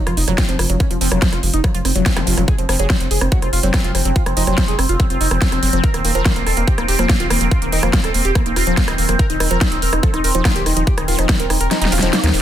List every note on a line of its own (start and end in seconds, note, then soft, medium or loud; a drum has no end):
0.00 12.42 C4 medium
0.00 impact medium
0.07 0.13 F1 medium
0.07 0.13 F3 medium
0.07 0.17 F4 medium
0.07 cross-stick medium
0.07 closed hi-hat medium
0.17 0.24 F1 loud
0.17 0.24 D#4 medium
0.17 open hi-hat loud
0.28 0.34 F1 medium
0.28 0.34 F3 medium
0.28 0.35 F#3 loud
0.28 cross-stick soft
0.28 closed hi-hat medium
0.38 0.45 F3 medium
0.38 0.43 C4 medium
0.38 kick loud
0.38 snare loud
0.38 closed hi-hat medium
0.49 0.55 F1 medium
0.49 0.58 F3 medium
0.49 0.55 C4 loud
0.49 closed hi-hat medium
0.59 0.66 F1 loud
0.59 0.69 F3 medium
0.59 0.66 F3 medium
0.59 cross-stick medium
0.59 open hi-hat medium
0.70 0.76 F1 medium
0.70 0.76 F3 medium
0.70 0.74 F#3 medium
0.70 closed hi-hat medium
0.80 0.87 C#4 medium
0.80 kick loud
0.80 cross-stick soft
0.80 closed hi-hat medium
0.91 0.97 F1 medium
0.91 1.00 F3 medium
0.91 0.97 F3 medium
0.91 closed hi-hat medium
1.01 1.08 F1 loud
1.01 1.05 F3 loud
1.01 1.08 C4 loud
1.01 open hi-hat loud
1.12 1.18 F1 medium
1.12 1.18 F3 medium
1.12 1.19 F#3 loud
1.12 cross-stick medium
1.12 closed hi-hat medium
1.22 1.29 F3 medium
1.22 kick loud
1.22 snare loud
1.22 closed hi-hat medium
1.33 1.39 F1 medium
1.33 1.39 F4 medium
1.33 cross-stick soft
1.33 closed hi-hat medium
1.43 1.50 F1 loud
1.43 1.49 F3 medium
1.43 open hi-hat loud
1.54 1.60 F1 medium
1.54 1.60 D#4 loud
1.54 closed hi-hat medium
1.64 1.70 F3 medium
1.64 1.68 F#3 medium
1.64 kick loud
1.64 cross-stick medium
1.64 closed hi-hat medium
1.75 1.81 F1 medium
1.75 1.81 F3 medium
1.75 1.84 F4 medium
1.75 closed hi-hat medium
1.85 1.92 F1 loud
1.85 1.91 C4 loud
1.85 cross-stick soft
1.85 open hi-hat loud
1.96 2.02 F1 medium
1.96 2.02 F3 medium
1.96 2.03 F#3 loud
1.96 closed hi-hat medium
2.06 2.12 F3 medium
2.06 2.10 C4 medium
2.06 kick loud
2.06 snare loud
2.06 closed hi-hat medium
2.16 2.23 F1 medium
2.16 2.26 F3 medium
2.16 2.23 C4 medium
2.16 cross-stick medium
2.16 closed hi-hat medium
2.16 zap medium
2.27 2.33 F1 loud
2.27 2.37 F3 medium
2.27 2.33 F3 medium
2.27 open hi-hat loud
2.37 2.44 F1 medium
2.37 2.44 F3 medium
2.37 2.42 F#3 medium
2.37 cross-stick soft
2.37 closed hi-hat medium
2.48 2.54 G#4 loud
2.48 kick loud
2.48 closed hi-hat medium
2.58 2.65 F1 loud
2.58 2.68 F3 medium
2.58 2.65 C4 medium
2.58 closed hi-hat medium
2.69 2.75 F1 loud
2.69 2.73 F3 loud
2.69 2.75 C4 medium
2.69 cross-stick medium
2.69 open hi-hat loud
2.79 2.86 F1 medium
2.79 2.87 F#3 loud
2.79 2.86 G#4 loud
2.79 closed hi-hat medium
2.90 2.97 F3 medium
2.90 2.96 C4 medium
2.90 kick loud
2.90 cross-stick soft
2.90 snare loud
2.90 closed hi-hat medium
3.00 3.07 F1 medium
3.00 3.07 C4 medium
3.00 closed hi-hat medium
3.11 3.17 F1 loud
3.11 3.17 G#4 medium
3.11 open hi-hat loud
3.21 3.28 F1 medium
3.21 3.28 C4 medium
3.21 cross-stick medium
3.21 closed hi-hat medium
3.32 3.36 F#3 medium
3.32 3.38 F#4 medium
3.32 kick loud
3.32 closed hi-hat medium
3.42 3.49 F1 medium
3.42 3.49 C4 medium
3.42 3.52 F4 medium
3.42 cross-stick soft
3.42 closed hi-hat medium
3.53 3.59 F1 loud
3.53 3.59 F4 loud
3.53 open hi-hat loud
3.63 3.70 F1 medium
3.63 3.71 F#3 loud
3.63 3.70 C4 medium
3.63 closed hi-hat medium
3.74 3.78 C4 medium
3.74 3.80 C4 medium
3.74 kick loud
3.74 cross-stick medium
3.74 snare loud
3.74 closed hi-hat medium
3.84 3.91 F1 medium
3.84 3.94 F3 medium
3.84 3.91 F4 loud
3.84 closed hi-hat medium
3.95 4.01 F1 medium
3.95 4.05 F3 medium
3.95 4.01 C4 medium
3.95 cross-stick soft
3.95 open hi-hat loud
4.05 4.12 F1 medium
4.05 4.10 F#3 medium
4.05 4.12 C4 medium
4.05 closed hi-hat medium
4.16 4.22 F4 medium
4.16 kick loud
4.16 closed hi-hat medium
4.26 4.33 F1 medium
4.26 4.36 F3 medium
4.26 4.33 C4 medium
4.26 cross-stick medium
4.26 closed hi-hat medium
4.37 4.43 F1 loud
4.37 4.41 F3 loud
4.37 4.43 D#4 loud
4.37 open hi-hat loud
4.47 4.54 F1 medium
4.47 4.55 F#3 loud
4.47 4.54 C4 medium
4.47 cross-stick soft
4.47 closed hi-hat medium
4.58 4.64 C4 medium
4.58 kick loud
4.58 snare loud
4.58 closed hi-hat medium
4.68 4.75 F1 medium
4.68 4.75 G#4 loud
4.68 closed hi-hat medium
4.79 4.85 F1 loud
4.79 4.85 C4 medium
4.79 cross-stick medium
4.79 open hi-hat loud
4.89 4.96 F1 medium
4.89 4.96 F4 loud
4.89 closed hi-hat medium
5.00 5.04 F#3 medium
5.00 5.06 C4 medium
5.00 kick loud
5.00 cross-stick soft
5.00 closed hi-hat medium
5.10 5.17 F1 medium
5.10 5.17 C4 medium
5.10 5.20 F4 medium
5.10 closed hi-hat medium
5.21 5.27 F1 loud
5.21 5.27 D#4 medium
5.21 open hi-hat loud
5.31 5.38 F1 medium
5.31 5.36 F3 medium
5.31 5.38 C4 medium
5.31 cross-stick medium
5.31 closed hi-hat medium
5.42 5.49 F#3 medium
5.42 5.48 C4 medium
5.42 kick loud
5.42 snare loud
5.42 closed hi-hat medium
5.52 5.59 F1 medium
5.52 5.57 F3 medium
5.52 5.59 C4 loud
5.52 cross-stick soft
5.52 closed hi-hat medium
5.63 5.69 F1 loud
5.63 5.73 F#3 medium
5.63 5.69 C4 medium
5.63 open hi-hat loud
5.73 5.80 F1 medium
5.73 5.78 F3 loud
5.73 5.80 C4 medium
5.73 closed hi-hat medium
5.84 5.90 A#4 medium
5.84 kick loud
5.84 closed hi-hat medium
5.94 6.01 D#1 medium
5.94 6.03 D#3 medium
5.94 6.00 A#3 medium
5.94 cross-stick soft
5.94 closed hi-hat medium
6.05 6.11 D#1 loud
6.05 6.09 D#3 loud
6.05 6.11 A#3 medium
6.05 6.17 C4 medium
6.05 open hi-hat loud
6.15 6.22 D#1 medium
6.15 6.22 F3 loud
6.15 6.21 A#4 medium
6.15 closed hi-hat medium
6.26 6.33 D#3 medium
6.26 6.32 A#3 medium
6.26 kick loud
6.26 cross-stick medium
6.26 snare loud
6.26 closed hi-hat medium
6.36 6.43 D#1 medium
6.36 6.42 A#3 medium
6.36 closed hi-hat medium
6.46 6.53 D#1 loud
6.46 6.53 D#4 medium
6.46 6.53 A4 medium
6.46 cross-stick soft
6.46 open hi-hat medium
6.57 6.64 D#1 medium
6.57 6.63 A#3 medium
6.57 6.64 D#4 medium
6.57 closed hi-hat medium
6.67 6.72 F3 medium
6.67 6.74 G4 medium
6.67 kick loud
6.67 closed hi-hat medium
6.78 6.85 D#1 medium
6.78 6.84 A#3 medium
6.78 6.88 D#4 medium
6.78 cross-stick medium
6.78 closed hi-hat medium
6.88 6.95 D#1 loud
6.88 6.95 G4 loud
6.88 open hi-hat loud
6.99 7.06 D#1 medium
6.99 7.06 F3 loud
6.99 7.05 A#3 medium
6.99 cross-stick soft
6.99 closed hi-hat medium
7.09 7.16 A#3 medium
7.09 7.14 A#3 medium
7.09 kick loud
7.09 snare loud
7.09 closed hi-hat medium
7.20 7.27 D#1 medium
7.20 7.29 D#3 medium
7.20 7.26 F4 loud
7.20 closed hi-hat medium
7.30 7.37 D#1 loud
7.30 7.40 D#3 medium
7.30 7.37 A#3 medium
7.30 cross-stick medium
7.30 open hi-hat medium
7.41 7.48 D#1 medium
7.41 7.45 F3 medium
7.41 7.47 A#3 medium
7.41 closed hi-hat medium
7.51 7.58 F4 medium
7.51 kick loud
7.51 cross-stick soft
7.51 closed hi-hat medium
7.62 7.68 D#1 loud
7.62 7.71 D#3 medium
7.62 7.68 A#3 medium
7.62 closed hi-hat medium
7.72 7.79 D#1 medium
7.72 7.77 D#3 loud
7.72 8.31 C4 loud
7.72 7.79 D#4 loud
7.72 open hi-hat loud
7.83 7.89 D#1 medium
7.83 7.90 F3 loud
7.83 7.89 A#3 medium
7.83 cross-stick medium
7.83 closed hi-hat medium
7.93 8.01 D#3 medium
7.93 8.00 A#3 medium
7.93 kick loud
7.93 snare loud
7.93 closed hi-hat medium
8.04 8.10 D#1 medium
8.04 8.10 A4 medium
8.04 cross-stick soft
8.04 closed hi-hat medium
8.14 8.21 D#1 loud
8.14 8.21 A#3 medium
8.14 open hi-hat medium
8.25 8.31 D#1 medium
8.25 8.31 G4 loud
8.25 closed hi-hat medium
8.35 8.40 F3 medium
8.35 8.42 A#3 medium
8.35 kick loud
8.35 cross-stick medium
8.35 closed hi-hat medium
8.46 8.52 D#1 medium
8.46 8.52 A#3 medium
8.46 8.56 D#4 medium
8.46 closed hi-hat medium
8.56 8.63 D#1 loud
8.56 8.63 F4 loud
8.56 cross-stick soft
8.56 open hi-hat loud
8.67 8.73 D#1 medium
8.67 8.74 F3 loud
8.67 8.73 A#3 medium
8.67 closed hi-hat medium
8.77 8.82 A#3 medium
8.77 8.84 A#3 medium
8.77 kick loud
8.77 snare loud
8.77 closed hi-hat medium
8.88 8.94 D#1 medium
8.88 8.97 D#3 medium
8.88 8.94 D#4 loud
8.88 cross-stick medium
8.88 closed hi-hat medium
8.98 9.05 D#1 loud
8.98 9.08 D#3 medium
8.98 9.05 A#3 medium
8.98 open hi-hat medium
9.09 9.15 D#1 medium
9.09 9.13 F3 medium
9.09 9.15 A#3 medium
9.09 cross-stick soft
9.09 closed hi-hat medium
9.19 9.26 A#4 medium
9.19 kick loud
9.19 closed hi-hat medium
9.30 9.36 D#1 loud
9.30 9.39 D#3 medium
9.30 9.36 D#4 medium
9.30 closed hi-hat medium
9.40 9.47 D#1 loud
9.40 9.45 D#3 loud
9.40 9.47 D#4 medium
9.40 cross-stick medium
9.40 open hi-hat loud
9.51 9.57 D#1 medium
9.51 9.58 F3 loud
9.51 9.57 A#4 medium
9.51 closed hi-hat medium
9.61 9.68 D#4 medium
9.61 kick loud
9.61 cross-stick soft
9.61 snare loud
9.61 closed hi-hat medium
9.72 9.78 D#1 medium
9.72 9.78 D#4 medium
9.72 closed hi-hat medium
9.82 9.89 D#1 loud
9.82 9.89 A#4 medium
9.82 open hi-hat medium
9.93 9.99 D#1 medium
9.93 9.99 D#4 medium
9.93 cross-stick medium
9.93 closed hi-hat medium
10.03 10.08 F3 medium
10.03 10.10 A4 medium
10.03 kick loud
10.03 closed hi-hat medium
10.14 10.20 D#1 medium
10.14 10.24 D#4 medium
10.14 10.20 D#4 medium
10.14 cross-stick soft
10.14 closed hi-hat medium
10.24 10.31 D#1 loud
10.24 10.31 A#4 loud
10.24 open hi-hat loud
10.35 10.41 D#1 medium
10.35 10.42 F3 loud
10.35 10.41 D#4 medium
10.35 closed hi-hat medium
10.45 10.50 A#3 medium
10.45 10.52 D#4 medium
10.45 kick loud
10.45 cross-stick medium
10.45 snare loud
10.45 closed hi-hat medium
10.56 10.62 D#1 medium
10.56 10.65 D#3 medium
10.56 10.62 G4 loud
10.56 closed hi-hat medium
10.66 10.73 D#1 loud
10.66 10.76 D#3 medium
10.66 10.73 D#4 medium
10.66 cross-stick soft
10.66 open hi-hat medium
10.77 10.83 D#1 medium
10.77 10.81 F3 medium
10.77 10.83 D#4 medium
10.77 closed hi-hat medium
10.87 10.94 G4 medium
10.87 kick loud
10.87 closed hi-hat medium
10.98 11.04 D#1 medium
10.98 11.07 D#3 medium
10.98 11.04 D#4 medium
10.98 cross-stick medium
10.98 closed hi-hat medium
11.08 11.15 D#1 medium
11.08 11.12 D#3 loud
11.08 11.14 F4 medium
11.08 open hi-hat loud
11.19 11.25 D#1 medium
11.19 11.26 F3 loud
11.19 11.25 D#4 medium
11.19 cross-stick soft
11.19 closed hi-hat medium
11.29 11.36 D#3 medium
11.29 11.35 D#4 medium
11.29 kick loud
11.29 snare loud
11.29 closed hi-hat medium
11.40 11.46 D#1 medium
11.40 11.46 A#4 medium
11.40 closed hi-hat medium
11.50 11.57 D#1 loud
11.50 11.56 D#4 medium
11.50 cross-stick medium
11.50 open hi-hat medium
11.61 11.67 D#1 medium
11.61 11.67 A#4 loud
11.61 closed hi-hat medium
11.71 11.75 F3 medium
11.71 11.77 D#4 medium
11.71 snare medium
11.71 closed hi-hat medium
11.82 11.88 D#1 medium
11.82 11.88 D#4 medium
11.82 11.92 D#4 medium
11.82 snare medium
11.82 closed hi-hat medium
11.92 11.99 D#1 loud
11.92 11.98 F4 loud
11.92 open hi-hat loud
11.92 zap medium
11.99 12.09 D#1 medium
11.99 12.10 F3 loud
11.99 12.09 D#4 medium
11.99 snare medium
11.99 closed hi-hat medium
12.13 12.17 A#3 medium
12.13 12.19 D#4 medium
12.13 snare loud
12.13 closed hi-hat medium
12.23 12.30 D#2 medium
12.23 12.33 D#3 medium
12.23 12.30 D#4 loud
12.23 snare loud
12.23 closed hi-hat medium
12.34 12.40 D#1 medium
12.34 12.42 D#3 medium
12.34 12.40 D#4 medium
12.34 open hi-hat medium